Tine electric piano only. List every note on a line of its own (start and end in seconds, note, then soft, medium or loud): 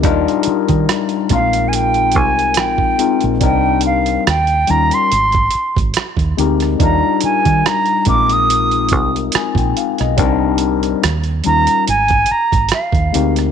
0.03 1.30 G3 loud
0.03 1.30 D4 medium
0.03 1.31 D#4 medium
0.03 1.31 F4 loud
0.03 1.32 A#4 loud
1.29 2.70 G#3 medium
1.29 2.70 C4 medium
1.29 1.38 D4 medium
1.29 2.71 F4 medium
1.29 2.71 A#4 medium
1.38 2.74 D#4 medium
2.98 3.34 G#3 medium
2.98 3.35 C4 medium
2.98 3.35 D#4 medium
2.98 3.36 F4 medium
2.98 3.36 A#4 medium
3.40 4.25 G3 medium
3.40 4.26 C4 medium
3.40 4.26 D4 medium
3.40 4.27 D#4 medium
3.40 4.27 A#4 medium
4.67 5.10 G3 medium
4.67 5.11 C#4 medium
4.67 5.11 D#4 medium
4.67 5.11 F4 medium
4.67 5.12 A#4 medium
6.37 6.73 G#3 medium
6.37 6.73 C4 medium
6.37 6.74 D#4 medium
6.37 6.74 G4 medium
6.37 6.74 A#4 medium
6.79 8.06 G3 medium
6.79 8.07 D4 medium
6.79 8.07 D#4 medium
6.79 8.07 F4 medium
6.79 8.08 A#4 medium
8.06 9.46 G#3 medium
8.06 9.46 C4 medium
8.06 8.14 D4 medium
8.06 9.47 F4 medium
8.06 9.47 A#4 medium
8.14 9.50 D#4 medium
9.35 9.56 G#5 medium
9.58 9.75 G5 soft
9.77 9.99 F5 medium
10.00 10.40 D#5 medium
10.17 11.02 G3 loud
10.17 11.02 C4 loud
10.17 11.03 D4 loud
10.17 11.03 D#4 medium
10.17 11.03 A#4 loud
11.44 11.86 G3 medium
11.44 11.87 C#4 medium
11.44 11.87 D#4 medium
11.44 11.88 F4 medium
11.44 11.88 A#4 medium
13.12 13.48 G#3 medium
13.12 13.49 C4 medium
13.12 13.49 D#4 medium
13.12 13.50 G4 medium
13.12 13.50 A#4 medium